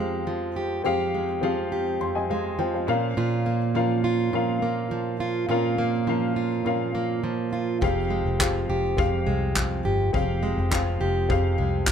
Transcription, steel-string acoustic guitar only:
0, 0, Header, 1, 2, 480
1, 0, Start_track
1, 0, Key_signature, -4, "minor"
1, 0, Tempo, 580833
1, 699, Time_signature, 4, 2, 24, 8
1, 9850, End_track
2, 0, Start_track
2, 0, Title_t, "Steel-string acoustic guitar"
2, 0, Program_c, 0, 25
2, 0, Note_on_c, 0, 41, 71
2, 0, Note_on_c, 0, 53, 64
2, 0, Note_on_c, 0, 56, 52
2, 0, Note_on_c, 0, 67, 55
2, 219, Note_off_c, 0, 53, 0
2, 222, Note_on_c, 0, 53, 61
2, 456, Note_off_c, 0, 67, 0
2, 466, Note_on_c, 0, 67, 57
2, 690, Note_off_c, 0, 41, 0
2, 697, Note_off_c, 0, 67, 0
2, 700, Note_on_c, 0, 41, 67
2, 707, Note_on_c, 0, 67, 55
2, 936, Note_off_c, 0, 56, 0
2, 946, Note_on_c, 0, 56, 52
2, 1178, Note_off_c, 0, 53, 0
2, 1182, Note_on_c, 0, 53, 60
2, 1412, Note_off_c, 0, 67, 0
2, 1422, Note_on_c, 0, 67, 53
2, 1650, Note_off_c, 0, 41, 0
2, 1660, Note_on_c, 0, 41, 75
2, 1897, Note_off_c, 0, 56, 0
2, 1907, Note_on_c, 0, 56, 54
2, 2135, Note_off_c, 0, 53, 0
2, 2139, Note_on_c, 0, 53, 59
2, 2381, Note_off_c, 0, 41, 0
2, 2382, Note_on_c, 0, 46, 71
2, 2430, Note_off_c, 0, 67, 0
2, 2433, Note_off_c, 0, 56, 0
2, 2611, Note_off_c, 0, 46, 0
2, 2621, Note_on_c, 0, 46, 77
2, 2625, Note_on_c, 0, 65, 60
2, 2860, Note_on_c, 0, 58, 54
2, 3097, Note_off_c, 0, 53, 0
2, 3100, Note_on_c, 0, 53, 58
2, 3337, Note_off_c, 0, 65, 0
2, 3340, Note_on_c, 0, 65, 56
2, 3570, Note_off_c, 0, 46, 0
2, 3580, Note_on_c, 0, 46, 69
2, 3811, Note_off_c, 0, 58, 0
2, 3821, Note_on_c, 0, 58, 52
2, 4056, Note_off_c, 0, 53, 0
2, 4059, Note_on_c, 0, 53, 59
2, 4296, Note_off_c, 0, 65, 0
2, 4300, Note_on_c, 0, 65, 60
2, 4524, Note_off_c, 0, 46, 0
2, 4534, Note_on_c, 0, 46, 72
2, 4536, Note_off_c, 0, 65, 0
2, 4539, Note_on_c, 0, 65, 57
2, 4770, Note_off_c, 0, 58, 0
2, 4780, Note_on_c, 0, 58, 54
2, 5014, Note_off_c, 0, 53, 0
2, 5018, Note_on_c, 0, 53, 64
2, 5255, Note_off_c, 0, 65, 0
2, 5258, Note_on_c, 0, 65, 58
2, 5493, Note_off_c, 0, 46, 0
2, 5503, Note_on_c, 0, 46, 64
2, 5732, Note_off_c, 0, 58, 0
2, 5742, Note_on_c, 0, 58, 51
2, 5976, Note_off_c, 0, 53, 0
2, 5980, Note_on_c, 0, 53, 55
2, 6217, Note_off_c, 0, 65, 0
2, 6220, Note_on_c, 0, 65, 60
2, 6457, Note_on_c, 0, 41, 73
2, 6460, Note_off_c, 0, 65, 0
2, 6463, Note_on_c, 0, 67, 59
2, 6464, Note_off_c, 0, 46, 0
2, 6511, Note_off_c, 0, 58, 0
2, 6697, Note_on_c, 0, 56, 49
2, 6939, Note_off_c, 0, 53, 0
2, 6943, Note_on_c, 0, 53, 58
2, 7176, Note_off_c, 0, 67, 0
2, 7186, Note_on_c, 0, 67, 56
2, 7407, Note_off_c, 0, 41, 0
2, 7417, Note_on_c, 0, 41, 71
2, 7647, Note_off_c, 0, 56, 0
2, 7657, Note_on_c, 0, 56, 52
2, 7891, Note_off_c, 0, 53, 0
2, 7895, Note_on_c, 0, 53, 62
2, 8131, Note_off_c, 0, 67, 0
2, 8141, Note_on_c, 0, 67, 60
2, 8366, Note_off_c, 0, 41, 0
2, 8373, Note_off_c, 0, 67, 0
2, 8376, Note_on_c, 0, 41, 70
2, 8383, Note_on_c, 0, 67, 62
2, 8607, Note_off_c, 0, 56, 0
2, 8617, Note_on_c, 0, 56, 52
2, 8848, Note_off_c, 0, 53, 0
2, 8851, Note_on_c, 0, 53, 62
2, 9086, Note_off_c, 0, 67, 0
2, 9096, Note_on_c, 0, 67, 58
2, 9326, Note_off_c, 0, 41, 0
2, 9336, Note_on_c, 0, 41, 71
2, 9561, Note_off_c, 0, 56, 0
2, 9571, Note_on_c, 0, 56, 56
2, 9803, Note_off_c, 0, 53, 0
2, 9807, Note_on_c, 0, 53, 57
2, 9850, Note_off_c, 0, 41, 0
2, 9850, Note_off_c, 0, 53, 0
2, 9850, Note_off_c, 0, 56, 0
2, 9850, Note_off_c, 0, 67, 0
2, 9850, End_track
0, 0, End_of_file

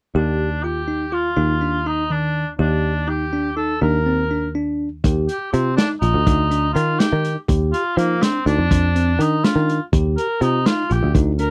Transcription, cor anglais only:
0, 0, Header, 1, 2, 480
1, 0, Start_track
1, 0, Key_signature, -3, "major"
1, 0, Tempo, 488599
1, 153, Time_signature, 5, 3, 24, 8
1, 11302, End_track
2, 0, Start_track
2, 0, Title_t, "Cor anglais"
2, 0, Program_c, 0, 69
2, 157, Note_on_c, 0, 62, 58
2, 625, Note_on_c, 0, 67, 68
2, 640, Note_off_c, 0, 62, 0
2, 1111, Note_on_c, 0, 65, 68
2, 1125, Note_off_c, 0, 67, 0
2, 1842, Note_on_c, 0, 63, 66
2, 1857, Note_off_c, 0, 65, 0
2, 2079, Note_on_c, 0, 62, 72
2, 2094, Note_off_c, 0, 63, 0
2, 2438, Note_off_c, 0, 62, 0
2, 2546, Note_on_c, 0, 62, 64
2, 3036, Note_on_c, 0, 67, 79
2, 3050, Note_off_c, 0, 62, 0
2, 3498, Note_off_c, 0, 67, 0
2, 3504, Note_on_c, 0, 69, 79
2, 3734, Note_off_c, 0, 69, 0
2, 3754, Note_on_c, 0, 70, 74
2, 4437, Note_off_c, 0, 70, 0
2, 5199, Note_on_c, 0, 67, 75
2, 5422, Note_off_c, 0, 67, 0
2, 5430, Note_on_c, 0, 60, 64
2, 5658, Note_off_c, 0, 60, 0
2, 5666, Note_on_c, 0, 62, 83
2, 5777, Note_off_c, 0, 62, 0
2, 5899, Note_on_c, 0, 63, 89
2, 6590, Note_off_c, 0, 63, 0
2, 6615, Note_on_c, 0, 65, 80
2, 6865, Note_on_c, 0, 67, 83
2, 6880, Note_off_c, 0, 65, 0
2, 7232, Note_off_c, 0, 67, 0
2, 7592, Note_on_c, 0, 65, 87
2, 7836, Note_on_c, 0, 58, 75
2, 7851, Note_off_c, 0, 65, 0
2, 8081, Note_on_c, 0, 60, 81
2, 8095, Note_off_c, 0, 58, 0
2, 8311, Note_off_c, 0, 60, 0
2, 8316, Note_on_c, 0, 62, 92
2, 9048, Note_on_c, 0, 63, 76
2, 9063, Note_off_c, 0, 62, 0
2, 9282, Note_on_c, 0, 65, 70
2, 9297, Note_off_c, 0, 63, 0
2, 9639, Note_off_c, 0, 65, 0
2, 9990, Note_on_c, 0, 70, 83
2, 10235, Note_on_c, 0, 63, 73
2, 10250, Note_off_c, 0, 70, 0
2, 10479, Note_on_c, 0, 65, 83
2, 10494, Note_off_c, 0, 63, 0
2, 10728, Note_on_c, 0, 67, 67
2, 10743, Note_off_c, 0, 65, 0
2, 10962, Note_off_c, 0, 67, 0
2, 11192, Note_on_c, 0, 70, 75
2, 11302, Note_off_c, 0, 70, 0
2, 11302, End_track
0, 0, End_of_file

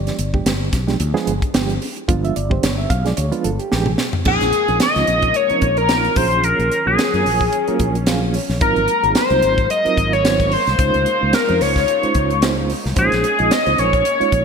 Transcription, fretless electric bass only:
0, 0, Header, 1, 3, 480
1, 0, Start_track
1, 0, Key_signature, -5, "minor"
1, 0, Tempo, 543478
1, 1844, Time_signature, 4, 2, 24, 8
1, 12760, End_track
2, 0, Start_track
2, 0, Title_t, "Fretless electric bass"
2, 0, Program_c, 0, 35
2, 168, Note_on_c, 0, 31, 87
2, 366, Note_off_c, 0, 31, 0
2, 405, Note_on_c, 0, 31, 101
2, 604, Note_off_c, 0, 31, 0
2, 645, Note_on_c, 0, 35, 85
2, 844, Note_off_c, 0, 35, 0
2, 886, Note_on_c, 0, 38, 101
2, 996, Note_off_c, 0, 38, 0
2, 1126, Note_on_c, 0, 31, 92
2, 1236, Note_off_c, 0, 31, 0
2, 1371, Note_on_c, 0, 31, 99
2, 1567, Note_off_c, 0, 31, 0
2, 1846, Note_on_c, 0, 31, 101
2, 2043, Note_off_c, 0, 31, 0
2, 2092, Note_on_c, 0, 31, 101
2, 2287, Note_off_c, 0, 31, 0
2, 2325, Note_on_c, 0, 31, 101
2, 2523, Note_off_c, 0, 31, 0
2, 2564, Note_on_c, 0, 35, 90
2, 2762, Note_off_c, 0, 35, 0
2, 2808, Note_on_c, 0, 38, 95
2, 2917, Note_off_c, 0, 38, 0
2, 3048, Note_on_c, 0, 31, 95
2, 3156, Note_off_c, 0, 31, 0
2, 3293, Note_on_c, 0, 33, 102
2, 3488, Note_off_c, 0, 33, 0
2, 3764, Note_on_c, 0, 34, 85
2, 3875, Note_off_c, 0, 34, 0
2, 3900, Note_on_c, 0, 34, 85
2, 3987, Note_off_c, 0, 34, 0
2, 4140, Note_on_c, 0, 34, 74
2, 4227, Note_off_c, 0, 34, 0
2, 4382, Note_on_c, 0, 37, 77
2, 4468, Note_off_c, 0, 37, 0
2, 4486, Note_on_c, 0, 34, 79
2, 4684, Note_off_c, 0, 34, 0
2, 4965, Note_on_c, 0, 34, 92
2, 5363, Note_off_c, 0, 34, 0
2, 5446, Note_on_c, 0, 34, 81
2, 5755, Note_off_c, 0, 34, 0
2, 5822, Note_on_c, 0, 34, 78
2, 5909, Note_off_c, 0, 34, 0
2, 6065, Note_on_c, 0, 34, 71
2, 6151, Note_off_c, 0, 34, 0
2, 6304, Note_on_c, 0, 42, 74
2, 6391, Note_off_c, 0, 42, 0
2, 6411, Note_on_c, 0, 34, 71
2, 6609, Note_off_c, 0, 34, 0
2, 6890, Note_on_c, 0, 34, 92
2, 7398, Note_off_c, 0, 34, 0
2, 7502, Note_on_c, 0, 34, 76
2, 7591, Note_off_c, 0, 34, 0
2, 7609, Note_on_c, 0, 32, 88
2, 7720, Note_off_c, 0, 32, 0
2, 7740, Note_on_c, 0, 32, 87
2, 7829, Note_off_c, 0, 32, 0
2, 7981, Note_on_c, 0, 32, 72
2, 8070, Note_off_c, 0, 32, 0
2, 8219, Note_on_c, 0, 36, 80
2, 8309, Note_off_c, 0, 36, 0
2, 8333, Note_on_c, 0, 32, 79
2, 8531, Note_off_c, 0, 32, 0
2, 8810, Note_on_c, 0, 32, 86
2, 9319, Note_off_c, 0, 32, 0
2, 9428, Note_on_c, 0, 36, 74
2, 9515, Note_off_c, 0, 36, 0
2, 9529, Note_on_c, 0, 37, 86
2, 9641, Note_off_c, 0, 37, 0
2, 9671, Note_on_c, 0, 37, 85
2, 9757, Note_off_c, 0, 37, 0
2, 9917, Note_on_c, 0, 37, 75
2, 10000, Note_off_c, 0, 37, 0
2, 10153, Note_on_c, 0, 41, 78
2, 10238, Note_off_c, 0, 41, 0
2, 10258, Note_on_c, 0, 37, 75
2, 10454, Note_off_c, 0, 37, 0
2, 10733, Note_on_c, 0, 37, 88
2, 11241, Note_off_c, 0, 37, 0
2, 11355, Note_on_c, 0, 36, 71
2, 11439, Note_off_c, 0, 36, 0
2, 11454, Note_on_c, 0, 34, 89
2, 11564, Note_off_c, 0, 34, 0
2, 11594, Note_on_c, 0, 34, 85
2, 11678, Note_off_c, 0, 34, 0
2, 11834, Note_on_c, 0, 34, 77
2, 11919, Note_off_c, 0, 34, 0
2, 12071, Note_on_c, 0, 37, 75
2, 12157, Note_off_c, 0, 37, 0
2, 12178, Note_on_c, 0, 34, 78
2, 12374, Note_off_c, 0, 34, 0
2, 12651, Note_on_c, 0, 34, 89
2, 12760, Note_off_c, 0, 34, 0
2, 12760, End_track
3, 0, Start_track
3, 0, Title_t, "Muted fretless electric bass strokes"
3, 4862, Note_on_c, 9, 29, 34
3, 4950, Note_off_c, 9, 29, 0
3, 6787, Note_on_c, 9, 29, 32
3, 6875, Note_off_c, 9, 29, 0
3, 8710, Note_on_c, 9, 29, 33
3, 8798, Note_off_c, 9, 29, 0
3, 10630, Note_on_c, 9, 29, 35
3, 10718, Note_off_c, 9, 29, 0
3, 12552, Note_on_c, 9, 29, 31
3, 12640, Note_off_c, 9, 29, 0
3, 12760, End_track
0, 0, End_of_file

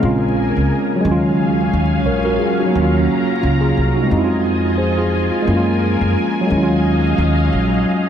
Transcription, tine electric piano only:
0, 0, Header, 1, 2, 480
1, 0, Start_track
1, 0, Tempo, 681818
1, 968, Time_signature, 4, 2, 24, 8
1, 5697, End_track
2, 0, Start_track
2, 0, Title_t, "Tine electric piano"
2, 0, Program_c, 0, 4
2, 0, Control_c, 0, 64, 127
2, 0, Note_on_c, 0, 56, 75
2, 0, Note_on_c, 0, 60, 71
2, 15, Note_on_c, 0, 61, 73
2, 18, Control_c, 0, 64, 0
2, 34, Note_on_c, 0, 65, 84
2, 157, Control_c, 0, 64, 127
2, 674, Note_on_c, 0, 54, 78
2, 702, Note_off_c, 0, 56, 0
2, 711, Note_on_c, 0, 56, 72
2, 721, Note_off_c, 0, 60, 0
2, 731, Note_off_c, 0, 61, 0
2, 736, Control_c, 0, 64, 0
2, 741, Note_off_c, 0, 65, 0
2, 748, Note_on_c, 0, 61, 69
2, 785, Note_on_c, 0, 65, 88
2, 841, Control_c, 0, 64, 127
2, 1227, Note_off_c, 0, 65, 0
2, 1449, Note_on_c, 0, 73, 66
2, 1454, Note_on_c, 0, 70, 55
2, 1574, Note_off_c, 0, 70, 0
2, 1580, Note_off_c, 0, 73, 0
2, 1583, Note_on_c, 0, 70, 76
2, 1586, Note_on_c, 0, 66, 65
2, 1681, Note_off_c, 0, 70, 0
2, 1683, Note_off_c, 0, 66, 0
2, 1683, Note_on_c, 0, 68, 68
2, 1690, Note_on_c, 0, 65, 59
2, 1817, Note_off_c, 0, 68, 0
2, 1820, Note_off_c, 0, 65, 0
2, 1826, Note_on_c, 0, 66, 63
2, 1830, Note_on_c, 0, 63, 54
2, 1863, Note_off_c, 0, 54, 0
2, 1871, Note_on_c, 0, 54, 77
2, 1895, Note_off_c, 0, 56, 0
2, 1907, Note_on_c, 0, 58, 71
2, 1914, Note_off_c, 0, 61, 0
2, 1937, Control_c, 0, 64, 0
2, 1945, Note_on_c, 0, 61, 72
2, 1981, Note_on_c, 0, 65, 84
2, 2054, Note_off_c, 0, 66, 0
2, 2054, Control_c, 0, 64, 127
2, 2056, Note_off_c, 0, 63, 0
2, 2396, Note_off_c, 0, 65, 0
2, 2400, Note_off_c, 0, 61, 0
2, 2404, Note_on_c, 0, 65, 60
2, 2409, Note_on_c, 0, 61, 53
2, 2537, Note_off_c, 0, 65, 0
2, 2540, Note_off_c, 0, 61, 0
2, 2541, Note_on_c, 0, 68, 73
2, 2546, Note_on_c, 0, 65, 65
2, 2772, Note_off_c, 0, 68, 0
2, 2774, Note_off_c, 0, 65, 0
2, 2785, Note_on_c, 0, 66, 65
2, 2790, Note_on_c, 0, 63, 57
2, 2830, Note_on_c, 0, 56, 82
2, 2840, Note_off_c, 0, 54, 0
2, 2858, Note_off_c, 0, 58, 0
2, 2867, Note_on_c, 0, 60, 78
2, 2896, Note_off_c, 0, 63, 0
2, 2896, Control_c, 0, 64, 0
2, 2904, Note_on_c, 0, 63, 79
2, 2941, Note_on_c, 0, 64, 76
2, 2967, Note_off_c, 0, 64, 0
2, 2987, Note_on_c, 0, 65, 90
2, 3014, Note_off_c, 0, 66, 0
2, 3022, Control_c, 0, 64, 127
2, 3364, Note_on_c, 0, 72, 64
2, 3370, Note_on_c, 0, 68, 59
2, 3409, Note_off_c, 0, 65, 0
2, 3496, Note_off_c, 0, 68, 0
2, 3497, Note_off_c, 0, 72, 0
2, 3505, Note_on_c, 0, 68, 76
2, 3509, Note_on_c, 0, 65, 64
2, 3733, Note_off_c, 0, 68, 0
2, 3735, Note_off_c, 0, 65, 0
2, 3746, Note_on_c, 0, 65, 65
2, 3799, Note_off_c, 0, 56, 0
2, 3817, Note_on_c, 0, 56, 79
2, 3818, Note_off_c, 0, 60, 0
2, 3837, Note_off_c, 0, 63, 0
2, 3838, Note_on_c, 0, 58, 71
2, 3856, Note_on_c, 0, 61, 75
2, 3858, Control_c, 0, 64, 0
2, 3873, Note_on_c, 0, 64, 69
2, 3911, Note_off_c, 0, 65, 0
2, 3913, Note_off_c, 0, 64, 0
2, 3920, Note_on_c, 0, 65, 85
2, 3970, Control_c, 0, 64, 127
2, 4513, Note_on_c, 0, 54, 79
2, 4540, Note_off_c, 0, 56, 0
2, 4549, Note_on_c, 0, 56, 70
2, 4563, Note_off_c, 0, 58, 0
2, 4572, Note_off_c, 0, 61, 0
2, 4578, Control_c, 0, 64, 0
2, 4585, Note_on_c, 0, 61, 77
2, 4604, Note_off_c, 0, 65, 0
2, 4623, Note_on_c, 0, 64, 70
2, 4648, Note_off_c, 0, 64, 0
2, 4669, Note_on_c, 0, 65, 91
2, 4710, Control_c, 0, 64, 127
2, 5697, Note_off_c, 0, 54, 0
2, 5697, Note_off_c, 0, 56, 0
2, 5697, Note_off_c, 0, 61, 0
2, 5697, Note_off_c, 0, 65, 0
2, 5697, End_track
0, 0, End_of_file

